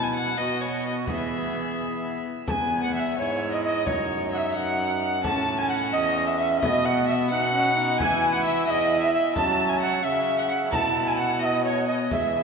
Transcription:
Already playing: trombone B2, viola B3, recorder E4
0.03 violin G#5
0.15 violin F#5
0.37 trombone B2, viola B3, recorder F#4, violin D#5
0.61 violin C#5
0.86 violin D#5
1.07 trombone E3, viola B3, recorder G#4, violin E5, frame drum
2.48 trombone E2, viola B3, violin G#5, recorder G#5 A5, frame drum
2.83 violin F#5, recorder F#5
2.93 violin E5, recorder F#5
2.99 recorder E5
3.17 trombone G#2, viola E4, violin C#5, recorder C#5
3.51 violin D#5, recorder D#5
3.62 violin D#5, recorder D#5
3.86 trombone F#2, viola D#4, violin C#5, recorder C#5, frame drum
4.31 violin E5, recorder F#5
4.37 recorder E5
4.54 trombone F#2, violin F#5, recorder F#5
5.23 trombone A2, viola C#4, violin A5, recorder A5, frame drum
5.58 violin G#5, recorder G#5
5.69 recorder F#5, violin F#5
5.92 trombone E2, recorder D#5, violin D#5
6.26 recorder E5, violin E5
6.38 recorder E5, violin E5
6.60 trombone B2, viola B3, violin D#5, recorder E5, frame drum
6.65 recorder D#5
6.84 violin F#5, recorder F#5
7.06 violin E5, recorder E5
7.30 trombone B2, viola D#4, violin F#5, recorder F#5
7.54 viola C#4
7.76 viola D#4
7.97 trombone E3, viola E4, violin G#5, recorder G#5, frame drum
8.33 violin F#5, recorder F#5
8.43 violin E5, recorder E5
8.66 trombone E2, violin D#5, recorder D#5 E5
9.01 violin E5, recorder E5
9.13 violin E5, recorder E5
9.36 trombone F#3, viola C#4, violin A5, recorder A5, frame drum
9.69 violin G#5, recorder G#5
9.80 violin F#5, recorder F#5
10.02 trombone C#3, viola C#4, violin E5, recorder E5
10.38 violin F#5, recorder F#5
10.48 violin F#5, recorder F#5
10.71 trombone B2, viola E4, violin A5, recorder A5 A#5, frame drum
11.06 violin G#5, recorder G#5
11.17 violin F#5, recorder F#5
11.39 viola B3, violin D#5, recorder E5
11.45 recorder D#5
11.64 violin C#5, recorder C#5
11.87 violin D#5, recorder D#5
12.10 trombone E3, viola G#3, violin E5, recorder E5, frame drum

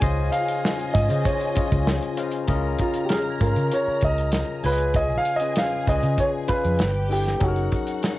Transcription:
Already playing: grand piano G#5
0.00 fingered electric bass C#2, tine electric piano C#3 C#4 F4 C5 D#5, french horn section C#3 C#4 D#4 F4, string section F4 D#5 G#5, glockenspiel C7, kick, closed hi-hat
0.32 grand piano F5, closed hi-hat
0.48 closed hi-hat
0.65 snare
0.79 closed hi-hat
0.94 fingered electric bass G#2, grand piano D#5, kick, closed hi-hat
1.09 tine electric piano C#3 C#4 F4 C5 D#5, fingered electric bass C#3, closed hi-hat
1.24 grand piano C#5, glockenspiel A#6, kick, closed hi-hat
1.41 closed hi-hat
1.55 tine electric piano C#3 C#4 F4 C#5 D#5, muted fingered electric bass stroke, kick, closed hi-hat
1.72 fingered electric bass C#2, kick, closed hi-hat
1.87 snare
2.03 closed hi-hat
2.17 tine electric piano C#3 C#4 F4 C5 F5, closed hi-hat
2.31 closed hi-hat
2.47 fingered electric bass C#2, tine electric piano C#3 C#4 E4 A#4 D#5, string section A#4 A#5, kick, closed hi-hat
2.55 tine electric piano F4
2.78 grand piano F4, kick, closed hi-hat
2.94 closed hi-hat
3.05 grand piano G4, closed hi-hat
3.09 grand piano G#4, glockenspiel F6, snare
3.30 glockenspiel G#6
3.40 fingered electric bass G#2, tine electric piano C#3 C#4 F4 A#4 F5, grand piano A#4, kick, closed hi-hat
3.56 fingered electric bass C#3, closed hi-hat
3.71 grand piano C#5, closed hi-hat
3.88 muted fingered electric bass stroke
4.01 fingered electric bass C#2, grand piano D#5, kick, closed hi-hat
4.18 closed hi-hat
4.32 snare, closed hi-hat
4.63 fingered electric bass C#2, tine electric piano C#3 C#4 F4 B4 C#5, string section G#4 G#5, grand piano B4, glockenspiel G#6, open hi-hat
4.72 tine electric piano D#5
4.78 closed hi-hat
4.94 grand piano D#5, kick, closed hi-hat
5.18 grand piano F5
5.25 closed hi-hat
5.36 grand piano D#5, closed hi-hat
5.41 tine electric piano C#3 C#4 F4 B4 D#5
5.56 grand piano F5, snare, closed hi-hat
5.86 fingered electric bass C#2, tine electric piano C#3 C#4 F4 B4 D5, grand piano D#5, kick, closed hi-hat
5.95 tine electric piano D#5
6.03 fingered electric bass C#3, closed hi-hat
6.18 grand piano C#5, kick, closed hi-hat
6.48 tine electric piano C#3 C#4 F4 B4 F5, grand piano B4, muted fingered electric bass stroke, kick, closed hi-hat
6.65 fingered electric bass F2, closed hi-hat
6.78 fingered electric bass G1, string section G4 G5, snare, closed hi-hat
7.09 tine electric piano G3 D4 E4 A4 B4, grand piano G4, open hi-hat
7.25 snare, closed hi-hat
7.39 fingered electric bass F#1, tine electric piano F#3 C#4 D#4 G#4 A4, string section F#4 F#5, kick, closed hi-hat
7.43 grand piano F#4
7.48 tine electric piano A#4
7.56 closed hi-hat
7.72 kick, closed hi-hat
7.87 closed hi-hat
8.03 snare, closed hi-hat

